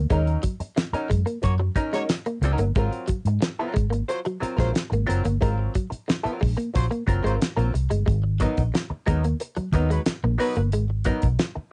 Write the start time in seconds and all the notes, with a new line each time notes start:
0.10 D#2 F#3 G#3 C#4 D#4 A#4, kick, closed hi-hat
0.27 muted clean electric guitar stroke, closed hi-hat
0.43 F#3, kick, closed hi-hat
0.60 muted fingered electric bass stroke, muted hollow-body jazz guitar stroke, closed hi-hat
0.76 muted hollow-body jazz guitar stroke, muted clean electric guitar stroke, snare, closed hi-hat
0.93 F#3 C#4 D#4 A#4, muted fingered electric bass stroke, closed hi-hat
1.10 F#2 G#3, kick, closed hi-hat
1.26 A#3, muted hollow-body jazz guitar stroke, closed hi-hat
1.42 F#2 A#3 F#4 C#5, muted hollow-body jazz guitar stroke, kick, closed hi-hat
1.60 F#3, muted hollow-body jazz guitar stroke
1.76 F#3 C#4 D#4 A#4, muted clean electric guitar stroke, kick, closed hi-hat
1.93 F#3 G#3 A#3 C#4 D#4 F#4 A#4 C#5, snare, closed hi-hat
2.09 muted hollow-body jazz guitar stroke, snare, closed hi-hat
2.26 A#3, muted hollow-body jazz guitar stroke, closed hi-hat
2.41 C#2 F#3 C#4 D#4 A#4, muted clean electric guitar stroke, closed hi-hat
2.58 G1 A#3, muted hollow-body jazz guitar stroke, closed hi-hat
2.75 G#1 F#3 G#3 C4 F4 A#4, kick, closed hi-hat
2.91 muted clean electric guitar stroke, closed hi-hat
3.08 F#3, muted fingered electric bass stroke, kick, closed hi-hat
3.25 G#2, muted hollow-body jazz guitar stroke, closed hi-hat
3.41 muted clean electric guitar stroke, muted hollow-body jazz guitar stroke, snare, closed hi-hat
3.59 F#3 C4 F4 A#4
3.74 G#1 G#3, muted hollow-body jazz guitar stroke, kick, closed hi-hat
3.90 A#3, muted hollow-body jazz guitar stroke, closed hi-hat
4.09 F#3 F4 C5, muted hollow-body jazz guitar stroke, closed hi-hat
4.25 F#3, muted hollow-body jazz guitar stroke, closed hi-hat
4.40 F#3 C4 F4 A#4, muted fingered electric bass stroke, muted clean electric guitar stroke, closed hi-hat
4.56 A#1 F#3 G#3 C4 F4 A#4 C5, kick, snare, closed hi-hat
4.73 muted hollow-body jazz guitar stroke, snare, closed hi-hat
4.90 G#1 A#3, muted hollow-body jazz guitar stroke, closed hi-hat
5.06 F#1 F#3 C4 F4 A#4, muted clean electric guitar stroke, closed hi-hat
5.24 G1 A#3, muted hollow-body jazz guitar stroke, closed hi-hat
5.41 G#1 F#3 G#3 C4 F4 A#4, kick, closed hi-hat
5.59 muted clean electric guitar stroke
5.75 F#3, kick, closed hi-hat
5.90 muted hollow-body jazz guitar stroke, muted fingered electric bass stroke, closed hi-hat
6.08 muted hollow-body jazz guitar stroke, muted clean electric guitar stroke, snare, closed hi-hat
6.23 F#3 C4 F4 A#4, muted fingered electric bass stroke, closed hi-hat
6.41 A#1 G#3, muted hollow-body jazz guitar stroke, kick, open hi-hat
6.57 A#3, muted hollow-body jazz guitar stroke, closed hi-hat
6.74 A#1 F#3 F4 C5, muted hollow-body jazz guitar stroke, kick, closed hi-hat
6.90 A#3, muted hollow-body jazz guitar stroke, closed hi-hat
7.07 F#1 F#3 C4 F4 A#4, muted clean electric guitar stroke, kick, closed hi-hat
7.23 G#1 F#3 G#3 C4 F4 A#4 C5, closed hi-hat
7.40 muted hollow-body jazz guitar stroke, snare, closed hi-hat
7.57 A#1 F#3 A#3 C4 F4 A#4, closed hi-hat
7.74 C2, muted hollow-body jazz guitar stroke, muted clean electric guitar stroke, closed hi-hat
7.90 G1 G#3, muted hollow-body jazz guitar stroke, closed hi-hat
8.06 G#1 G#3, kick, closed hi-hat
8.24 muted clean electric guitar stroke
8.40 F#3 B3 D#4 A#4, kick, closed hi-hat
8.57 A#1, kick, closed hi-hat
8.74 muted hollow-body jazz guitar stroke, muted clean electric guitar stroke, snare, closed hi-hat
8.90 muted hollow-body jazz guitar stroke, muted fingered electric bass stroke
9.06 D#2 F#3 G#3 B3 D#4 A#4, kick, closed hi-hat
9.23 A#3, muted hollow-body jazz guitar stroke, closed hi-hat
9.40 muted hollow-body jazz guitar stroke, closed hi-hat
9.56 F#3, muted hollow-body jazz guitar stroke, muted fingered electric bass stroke, closed hi-hat
9.72 D#2 F#3 B3 D#4 A#4, muted clean electric guitar stroke, kick, closed hi-hat
9.90 F#3 G#3 D#4 B4, muted hollow-body jazz guitar stroke, closed hi-hat
10.06 muted hollow-body jazz guitar stroke, muted fingered electric bass stroke, snare, closed hi-hat
10.24 A#1 A#3, muted hollow-body jazz guitar stroke
10.38 F#3 B3 D#4 A#4 B4, muted clean electric guitar stroke, open hi-hat
10.56 G1 A#3, muted hollow-body jazz guitar stroke, closed hi-hat
10.72 G#1 G#3, closed hi-hat
10.90 muted clean electric guitar stroke
11.04 F#3 B3 D#4 A#4, kick, closed hi-hat
11.22 B1, kick, closed hi-hat
11.39 muted hollow-body jazz guitar stroke, muted clean electric guitar stroke, snare, closed hi-hat
11.55 muted hollow-body jazz guitar stroke, muted fingered electric bass stroke